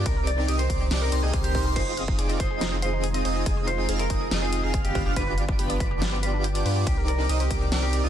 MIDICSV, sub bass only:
0, 0, Header, 1, 2, 480
1, 0, Start_track
1, 0, Tempo, 425532
1, 67, Time_signature, 4, 2, 24, 8
1, 9128, End_track
2, 0, Start_track
2, 0, Title_t, "Sub bass"
2, 0, Program_c, 0, 38
2, 65, Note_on_c, 0, 36, 101
2, 522, Note_off_c, 0, 36, 0
2, 547, Note_on_c, 0, 36, 96
2, 763, Note_off_c, 0, 36, 0
2, 787, Note_on_c, 0, 36, 99
2, 1003, Note_off_c, 0, 36, 0
2, 1025, Note_on_c, 0, 36, 96
2, 1242, Note_off_c, 0, 36, 0
2, 1266, Note_on_c, 0, 36, 100
2, 1363, Note_off_c, 0, 36, 0
2, 1387, Note_on_c, 0, 36, 100
2, 1482, Note_off_c, 0, 36, 0
2, 1506, Note_on_c, 0, 36, 96
2, 1723, Note_off_c, 0, 36, 0
2, 1746, Note_on_c, 0, 36, 100
2, 1962, Note_off_c, 0, 36, 0
2, 1987, Note_on_c, 0, 29, 99
2, 2443, Note_off_c, 0, 29, 0
2, 2466, Note_on_c, 0, 29, 97
2, 2682, Note_off_c, 0, 29, 0
2, 2706, Note_on_c, 0, 29, 97
2, 3642, Note_off_c, 0, 29, 0
2, 3663, Note_on_c, 0, 29, 97
2, 3881, Note_off_c, 0, 29, 0
2, 3905, Note_on_c, 0, 29, 97
2, 4362, Note_off_c, 0, 29, 0
2, 4385, Note_on_c, 0, 29, 96
2, 4602, Note_off_c, 0, 29, 0
2, 4625, Note_on_c, 0, 29, 97
2, 4842, Note_off_c, 0, 29, 0
2, 4864, Note_on_c, 0, 29, 98
2, 5202, Note_off_c, 0, 29, 0
2, 5226, Note_on_c, 0, 29, 104
2, 5442, Note_off_c, 0, 29, 0
2, 5466, Note_on_c, 0, 31, 97
2, 5683, Note_off_c, 0, 31, 0
2, 5707, Note_on_c, 0, 31, 99
2, 5802, Note_off_c, 0, 31, 0
2, 5824, Note_on_c, 0, 31, 101
2, 6281, Note_off_c, 0, 31, 0
2, 6307, Note_on_c, 0, 31, 100
2, 6523, Note_off_c, 0, 31, 0
2, 6545, Note_on_c, 0, 31, 97
2, 7482, Note_off_c, 0, 31, 0
2, 7505, Note_on_c, 0, 43, 98
2, 7722, Note_off_c, 0, 43, 0
2, 7747, Note_on_c, 0, 36, 101
2, 8203, Note_off_c, 0, 36, 0
2, 8225, Note_on_c, 0, 36, 98
2, 8442, Note_off_c, 0, 36, 0
2, 8465, Note_on_c, 0, 36, 97
2, 8682, Note_off_c, 0, 36, 0
2, 8706, Note_on_c, 0, 36, 97
2, 9043, Note_off_c, 0, 36, 0
2, 9068, Note_on_c, 0, 36, 103
2, 9128, Note_off_c, 0, 36, 0
2, 9128, End_track
0, 0, End_of_file